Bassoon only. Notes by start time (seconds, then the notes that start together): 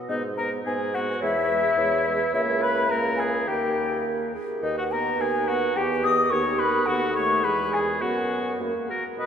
0.09 G#2
0.66 G#2
1.22 E2
1.77 E2
2.33 C#2
3.48 D#2
4.62 D#2
5.19 D#2
5.76 E2
6.31 D#2
6.87 D#2
7.44 E2
8.02 F#2
8.60 F#2
9.18 B2